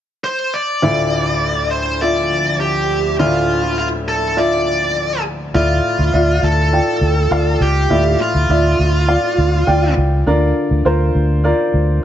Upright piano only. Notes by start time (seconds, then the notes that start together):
0.82 D2 A2 F4 D5 E5
2.01 F4 D5 E5
3.19 D2 A2 F4 D5 E5
4.37 F4 D5 E5
5.54 A2 F4 D5 E5
6.13 F4 D5 E5
6.73 F4 D5 G5
7.31 F4 D5 F5
7.90 A2 F4 D5 E5
8.49 F4 D5 E5
9.08 F4 D5 F5
9.67 F4 D5 G5
10.27 D3 F4 A#4 D5
10.85 F4 A#4 C5
11.44 F4 A#4 D5